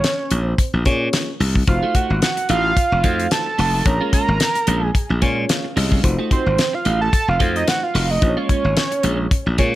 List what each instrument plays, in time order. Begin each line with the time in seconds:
Already playing: analog synth lead C#5
0.04 snare, closed hi-hat
0.31 slap bass A#1, closed hi-hat
0.48 analog synth lead C5
0.58 kick, closed hi-hat
0.73 slap bass A#1
0.85 slap bass A#2, fm electric piano A#3 C#4 F4 G#4 C#5, kick, closed hi-hat
1.13 snare, closed hi-hat
1.40 slap bass C2, open hi-hat
1.55 kick
1.67 slap bass F1, fm electric piano A3 D#4 F4 F#4 C5, analog synth lead F5, muted clean electric guitar stroke, kick, closed hi-hat
1.83 clean electric guitar A3 D#4 F#4
1.95 clean electric guitar A3 D#4 F#4, analog synth lead F#5, kick, closed hi-hat
2.10 slap bass G#1, muted clean electric guitar stroke
2.22 analog synth lead F#5, snare, closed hi-hat
2.37 muted clean electric guitar stroke, closed hi-hat
2.49 slap bass A1, clean electric guitar A3 D#4 F#4, analog synth lead F5, closed hi-hat
2.65 muted clean electric guitar stroke
2.77 muted clean electric guitar stroke, kick, closed hi-hat
2.92 slap bass F1, muted clean electric guitar stroke
3.04 slap bass F2, fm electric piano A3 D#4 F4 F#4 C5, clean electric guitar A3 D#4 F#4, kick, closed hi-hat
3.19 muted clean electric guitar stroke, closed hi-hat
3.31 analog synth lead A5, muted clean electric guitar stroke, snare, closed hi-hat
3.46 muted clean electric guitar stroke
3.58 slap bass F1, clean electric guitar A3 D#4 F#4, open hi-hat
3.73 clean electric guitar A3 D#4 F#4
3.85 slap bass A#1, fm electric piano A#3 C#4 F4 G#4 C#5, analog synth lead A#5, muted clean electric guitar stroke, kick, closed hi-hat
4.01 clean electric guitar G#3 C#4 F4
4.13 clean electric guitar G#3 C#4 F4, analog synth lead A#5, kick, closed hi-hat
4.28 slap bass G#1, muted clean electric guitar stroke
4.40 snare, closed hi-hat
4.55 muted clean electric guitar stroke, closed hi-hat
4.67 slap bass A#1, clean electric guitar G#3 C#4 F4, closed hi-hat
4.83 analog synth lead G#5, muted clean electric guitar stroke
4.94 muted clean electric guitar stroke, kick, closed hi-hat
5.10 slap bass A#1, muted clean electric guitar stroke
5.22 slap bass A#2, clean electric guitar G#3 C#4 F4, fm electric piano A#3 C#4 F4 G#4 C#5 G#5, kick, closed hi-hat
5.37 muted clean electric guitar stroke
5.49 fm electric piano F5, muted clean electric guitar stroke, snare, closed hi-hat
5.64 muted clean electric guitar stroke
5.76 slap bass C2, clean electric guitar G#3 C#4 F4, fm electric piano D#5, open hi-hat
5.91 clean electric guitar G#3 C#4 F4, kick
6.03 slap bass F1, fm electric piano A3 D#4 F4 F#4 C5, muted clean electric guitar stroke, kick, closed hi-hat
6.19 clean electric guitar A3 D#4 F#4
6.30 clean electric guitar A3 D#4 F#4, analog synth lead C5, kick, closed hi-hat
6.46 slap bass G#1, muted clean electric guitar stroke
6.58 snare, closed hi-hat
6.73 analog synth lead F5, muted clean electric guitar stroke
6.85 slap bass A1, clean electric guitar A3 D#4 F#4, closed hi-hat
7.01 analog synth lead A5, muted clean electric guitar stroke
7.13 analog synth lead A5, muted clean electric guitar stroke, kick, closed hi-hat
7.28 slap bass F1, analog synth lead F5, muted clean electric guitar stroke
7.40 slap bass F2, clean electric guitar A3 D#4 F#4, fm electric piano A3 D#4 F4 F#4 C5, kick, closed hi-hat
7.55 analog synth lead D#5, muted clean electric guitar stroke, closed hi-hat
7.67 analog synth lead F#5, muted clean electric guitar stroke, snare, closed hi-hat
7.82 analog synth lead F5, muted clean electric guitar stroke
7.94 slap bass F1, clean electric guitar A3 D#4 F#4, open hi-hat
8.10 clean electric guitar A3 D#4 F#4, analog synth lead D#5
8.22 slap bass A#1, fm electric piano A#3 C#4 F4 G#4 C5, muted clean electric guitar stroke, kick, closed hi-hat
8.29 fm electric piano C#5
8.37 clean electric guitar G#3 C#4 F4, analog synth lead C#5
8.49 clean electric guitar G#3 C#4 F4, analog synth lead C#5, kick, closed hi-hat
8.64 slap bass G#1, muted clean electric guitar stroke
8.77 snare, closed hi-hat
8.92 muted clean electric guitar stroke, closed hi-hat
9.03 slap bass A#1, clean electric guitar G#3 C#4 F4, closed hi-hat
9.19 muted clean electric guitar stroke
9.31 muted clean electric guitar stroke, kick, closed hi-hat
9.46 slap bass A#1, muted clean electric guitar stroke
9.58 slap bass A#2, clean electric guitar G#3 C#4 F4, fm electric piano A#3 C#4 F4 G#4 C#5, kick, closed hi-hat